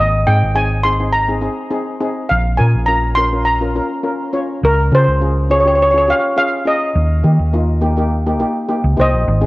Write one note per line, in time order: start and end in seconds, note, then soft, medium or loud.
0.00 0.24 G#1 medium
0.00 0.28 D#5 medium
0.27 0.41 G#2 medium
0.27 0.45 C4 medium
0.27 0.45 D#4 medium
0.27 0.45 G#4 medium
0.27 0.54 G5 medium
0.43 1.46 G#1 medium
0.55 0.73 C4 medium
0.55 0.74 D#4 medium
0.55 0.74 G#4 medium
0.55 0.86 G#5 medium
0.83 0.94 C4 medium
0.83 0.94 D#4 medium
0.83 0.94 G#4 medium
0.83 1.14 C6 medium
0.99 1.17 C4 medium
0.99 1.17 D#4 medium
0.99 1.17 G#4 medium
1.13 1.40 A#5 medium
1.28 1.37 C4 medium
1.28 1.37 D#4 medium
1.28 1.37 G#4 medium
1.41 1.60 C4 medium
1.41 1.60 D#4 medium
1.41 1.61 G#4 medium
1.70 1.89 C4 medium
1.70 1.89 D#4 medium
1.70 1.90 G#4 medium
2.00 2.30 C4 medium
2.00 2.30 D#4 medium
2.00 2.30 G#4 medium
2.29 2.57 A#1 medium
2.29 2.57 F5 medium
2.57 2.74 A#2 medium
2.57 2.77 C#4 medium
2.57 2.77 F4 medium
2.57 2.77 A#4 medium
2.57 2.88 G#5 medium
2.75 3.79 A#1 medium
2.86 3.06 C#4 medium
2.86 3.06 F4 medium
2.86 3.06 A#4 medium
2.86 3.17 A#5 medium
3.15 3.27 C#4 medium
3.15 3.27 F4 medium
3.15 3.27 A#4 medium
3.15 3.43 C6 medium
3.32 3.50 C#4 medium
3.32 3.50 F4 medium
3.32 3.50 A#4 medium
3.45 3.73 A#5 medium
3.61 3.70 C#4 medium
3.61 3.70 F4 medium
3.61 3.70 A#4 medium
3.75 3.94 C#4 medium
3.75 3.94 F4 medium
3.75 3.94 A#4 medium
4.03 4.22 C#4 medium
4.03 4.22 F4 medium
4.03 4.22 A#4 medium
4.33 4.62 C#4 medium
4.33 4.63 F4 medium
4.33 4.63 C#5 medium
4.63 4.89 C#2 medium
4.63 4.77 A#4 medium
4.92 5.05 C#3 medium
4.92 5.10 C#4 medium
4.92 5.10 F4 medium
4.92 5.10 G#4 medium
4.92 5.47 C5 medium
5.08 6.11 C#2 medium
5.21 5.39 C#4 medium
5.21 5.39 F4 medium
5.21 5.39 G#4 medium
5.50 5.59 C#4 medium
5.50 5.59 F4 medium
5.50 5.59 G#4 medium
5.50 5.58 C#5 medium
5.60 5.66 C#5 medium
5.65 5.82 C#4 medium
5.65 5.82 F4 medium
5.65 5.82 G4 medium
5.65 5.73 C#5 medium
5.75 5.81 C#5 medium
5.82 5.89 C#5 medium
5.91 6.02 C#4 medium
5.91 6.02 F4 medium
5.91 6.03 G#4 medium
5.91 5.97 C#5 medium
5.98 6.04 C#5 medium
6.08 6.26 C#4 medium
6.08 6.26 F4 medium
6.08 6.26 G4 medium
6.08 6.37 F5 medium
6.37 6.55 C#4 medium
6.37 6.55 F4 medium
6.37 6.55 G#4 medium
6.37 6.67 F5 medium
6.65 6.95 C#4 medium
6.65 6.95 F4 medium
6.65 6.95 G#4 medium
6.65 8.66 D#5 medium
6.95 7.21 D#2 medium
7.23 7.38 D#3 medium
7.23 7.42 A#3 medium
7.23 7.42 D#4 medium
7.23 7.42 G4 medium
7.39 8.43 D#2 medium
7.53 7.71 A#3 medium
7.53 7.72 D#4 medium
7.53 7.72 F4 medium
7.81 7.91 A#3 medium
7.81 7.91 D#4 medium
7.81 7.91 G4 medium
7.97 8.14 A#3 medium
7.97 8.14 D#4 medium
7.97 8.14 G4 medium
8.27 8.35 A#3 medium
8.27 8.35 D#4 medium
8.27 8.35 G4 medium
8.39 8.58 A#3 medium
8.39 8.58 D#4 medium
8.39 8.58 G4 medium
8.68 8.87 A#3 medium
8.68 8.87 D#4 medium
8.68 8.87 G4 medium
8.84 8.96 C#2 medium
8.97 9.12 C2 medium
8.97 9.27 A#3 medium
8.97 9.26 D#4 medium
8.97 9.26 G4 medium
8.97 9.46 C5 medium
9.01 9.46 D#5 medium
9.14 9.26 A#1 medium
9.28 9.46 G#1 loud
9.41 9.46 C4 medium
9.41 9.46 D#4 medium
9.41 9.46 G#4 medium